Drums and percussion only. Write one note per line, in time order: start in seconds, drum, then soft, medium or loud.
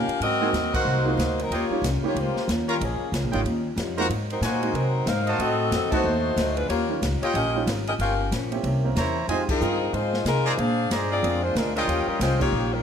0.09 ride soft
0.22 ride medium
0.54 snare medium
0.54 hi-hat pedal medium
0.54 ride medium
0.74 kick medium
0.74 crash medium
1.19 snare medium
1.19 hi-hat pedal medium
1.19 ride medium
1.39 ride soft
1.52 ride medium
1.84 snare medium
1.84 hi-hat pedal medium
1.84 ride medium
2.16 ride medium
2.36 snare soft
2.49 snare medium
2.49 hi-hat pedal medium
2.49 ride medium
2.69 ride soft
2.81 ride medium
3.14 snare medium
3.14 hi-hat pedal medium
3.14 ride medium
3.33 ride soft
3.46 ride medium
3.77 snare medium
3.77 hi-hat pedal medium
3.77 ride medium
3.98 ride soft
4.10 ride medium
4.30 ride soft
4.43 snare medium
4.43 hi-hat pedal medium
4.43 ride medium
4.63 ride soft
4.75 ride medium
5.07 snare medium
5.07 hi-hat pedal soft
5.07 ride medium
5.27 ride soft
5.39 ride medium
5.72 snare medium
5.72 hi-hat pedal medium
5.72 ride medium
5.92 kick medium
5.92 crash medium
6.37 snare medium
6.37 hi-hat pedal medium
6.37 ride medium
6.57 ride soft
6.70 ride medium
7.03 snare medium
7.03 hi-hat pedal medium
7.03 ride medium
7.23 ride soft
7.35 ride medium
7.67 snare medium
7.67 hi-hat pedal medium
7.67 ride medium
7.87 ride soft
7.99 ride medium
8.32 snare medium
8.32 hi-hat pedal medium
8.32 ride medium
8.52 ride soft
8.64 ride medium
8.96 snare medium
8.96 hi-hat pedal medium
8.96 ride medium
9.29 ride medium
9.49 kick medium
9.49 crash medium
9.61 hi-hat pedal medium
9.94 ride medium
10.14 snare medium
10.26 snare medium
10.26 hi-hat pedal medium
10.26 ride medium
10.58 ride medium
10.91 snare medium
10.91 hi-hat pedal medium
10.91 ride medium
11.24 ride medium
11.56 snare medium
11.56 hi-hat pedal medium
11.56 ride medium
11.76 ride soft
11.89 ride medium
12.21 snare medium
12.21 hi-hat pedal medium
12.21 ride medium
12.41 kick medium
12.41 crash medium